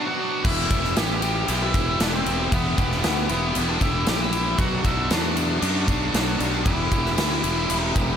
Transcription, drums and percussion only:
0.45 kick, crash
0.71 kick, ride
0.84 snare
0.96 snare, ride
1.22 ride
1.48 ride
1.74 kick, ride
2.00 snare, ride
2.26 ride
2.52 kick, ride
2.78 kick, ride
2.91 snare
3.04 snare, ride
3.29 ride
3.55 ride
3.81 kick, ride
4.07 snare, ride
4.33 ride
4.58 kick, ride
4.84 kick, ride
5.10 snare, ride
5.37 ride
5.62 ride
5.88 kick, ride
6.14 snare, ride
6.40 ride
6.66 kick, ride
6.92 kick, ride
7.06 snare
7.18 snare, ride
7.44 ride
7.70 ride
7.96 kick, ride

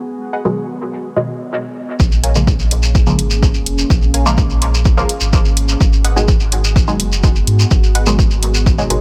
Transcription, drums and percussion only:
2.00 kick, shekere
2.12 shekere
2.24 closed hi-hat
2.35 shekere
2.47 kick, shekere
2.59 shekere
2.71 closed hi-hat
2.83 shekere
2.95 kick, shekere
3.07 shekere
3.19 closed hi-hat
3.30 shekere
3.43 kick, shekere
3.54 shekere
3.66 closed hi-hat
3.78 shekere
3.90 kick, shekere
4.02 shekere
4.14 closed hi-hat
4.26 shekere
4.37 kick, shekere
4.50 shekere
4.62 closed hi-hat
4.74 shekere
4.85 kick, shekere
4.98 shekere
5.09 closed hi-hat
5.20 shekere
5.33 kick, shekere
5.45 shekere
5.57 closed hi-hat
5.69 shekere
5.81 kick, shekere
5.93 shekere
6.05 closed hi-hat
6.17 shekere
6.28 kick, shekere
6.40 shekere
6.52 closed hi-hat
6.64 shekere
6.76 kick, shekere
6.88 shekere
7.00 closed hi-hat
7.12 shekere
7.23 kick, shekere
7.36 shekere
7.47 closed hi-hat
7.59 shekere
7.71 kick, shekere
7.83 shekere
7.95 closed hi-hat
8.06 shekere
8.19 kick, shekere
8.31 shekere
8.43 closed hi-hat
8.54 shekere
8.66 kick, shekere
8.78 shekere
8.90 closed hi-hat

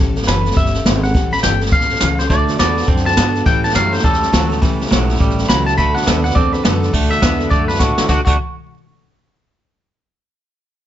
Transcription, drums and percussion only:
0.16 snare
0.22 snare
0.28 snare, hi-hat pedal
0.46 snare
0.51 snare
0.56 kick, snare
0.66 snare
0.74 snare
0.86 snare, hi-hat pedal
1.04 snare
1.15 kick, snare
1.33 snare
1.38 snare
1.43 snare, hi-hat pedal
1.61 snare
1.66 snare
1.71 kick, snare
1.81 snare
1.90 snare
1.95 snare
2.00 snare, hi-hat pedal
2.19 snare
2.30 kick, snare
2.48 snare
2.59 snare, hi-hat pedal
2.77 snare
2.83 snare
2.88 kick, snare
2.97 snare
3.06 snare
3.11 snare
3.17 snare, hi-hat pedal
3.35 snare
3.46 kick, snare
3.64 snare
3.70 snare
3.75 snare, hi-hat pedal
3.93 snare
3.99 snare
4.04 kick, snare
4.13 snare
4.22 snare
4.34 snare, hi-hat pedal
4.51 snare
4.62 kick, snare
4.81 snare
4.87 snare
4.92 snare, hi-hat pedal
5.09 snare
5.16 snare
5.21 kick, snare
5.30 snare
5.39 snare
5.44 snare
5.49 snare, hi-hat pedal
5.67 snare
5.78 kick, snare
5.96 snare
6.02 snare
6.07 snare, hi-hat pedal
6.25 snare
6.30 snare
6.36 kick, snare
6.54 snare
6.65 snare, hi-hat pedal
6.83 snare
6.94 kick, snare, crash
7.12 snare
7.22 kick, snare, hi-hat pedal
7.40 snare
7.51 kick, snare
7.69 snare
7.74 snare
7.80 kick, snare, hi-hat pedal
7.98 snare
8.08 kick, snare
8.27 kick, crash

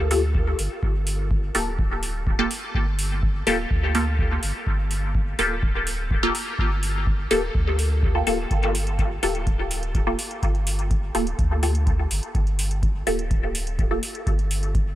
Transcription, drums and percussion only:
0.11 open hi-hat
0.35 kick
0.59 open hi-hat
0.83 kick
1.07 open hi-hat
1.31 kick
1.55 open hi-hat
1.79 kick
2.03 open hi-hat
2.27 kick
2.51 open hi-hat
2.75 kick
2.99 open hi-hat
3.23 kick
3.47 open hi-hat
3.71 kick
3.95 open hi-hat
4.19 kick
4.43 open hi-hat
4.67 kick
4.91 open hi-hat
5.15 kick
5.39 open hi-hat
5.63 kick
5.87 open hi-hat
6.11 kick
6.35 open hi-hat
6.59 kick
6.83 open hi-hat
7.07 kick
7.31 open hi-hat
7.55 kick
7.79 open hi-hat
8.03 kick
8.27 open hi-hat
8.51 kick, closed hi-hat
8.63 closed hi-hat
8.75 open hi-hat
8.87 closed hi-hat
8.99 kick, closed hi-hat
9.23 open hi-hat
9.35 closed hi-hat
9.47 kick, closed hi-hat
9.71 open hi-hat
9.83 closed hi-hat
9.95 kick, closed hi-hat
10.19 open hi-hat
10.31 closed hi-hat
10.43 kick, closed hi-hat
10.55 closed hi-hat
10.67 open hi-hat
10.79 closed hi-hat
10.91 kick, closed hi-hat
11.15 open hi-hat
11.27 closed hi-hat
11.39 kick, closed hi-hat
11.63 open hi-hat
11.75 closed hi-hat
11.87 kick, closed hi-hat
12.11 open hi-hat
12.23 closed hi-hat
12.35 kick, closed hi-hat
12.47 closed hi-hat
12.59 open hi-hat
12.71 closed hi-hat
12.83 kick, closed hi-hat
13.07 open hi-hat
13.19 closed hi-hat
13.31 kick, closed hi-hat
13.55 open hi-hat
13.67 closed hi-hat
13.79 kick, closed hi-hat
14.03 open hi-hat
14.15 closed hi-hat
14.27 kick, closed hi-hat
14.39 closed hi-hat
14.51 open hi-hat
14.63 closed hi-hat
14.75 kick, closed hi-hat

